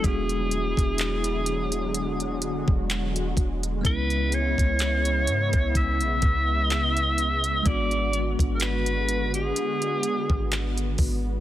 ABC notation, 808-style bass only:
X:1
M:4/4
L:1/16
Q:"Swing 16ths" 1/4=63
K:C#phr
V:1 name="808-style bass" clef=bass
E,,,3 E,,,8 E,,,3 E,,,2 | C,,3 C,,3 G,, C,,2 B,,, C,,6 | G,,,3 G,,,4- G,,, z3 G,,,3 G,,,2 |]